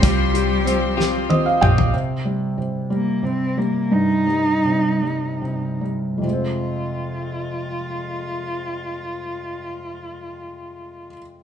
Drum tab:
HH |x-x-x-------|------------|------------|------------|
SD |------o-----|------------|------------|------------|
T1 |--------o---|------------|------------|------------|
T2 |----------o-|------------|------------|------------|
FT |-----------o|------------|------------|------------|
BD |o-----------|------------|------------|------------|

HH |------------|
SD |------------|
T1 |------------|
T2 |------------|
FT |------------|
BD |------------|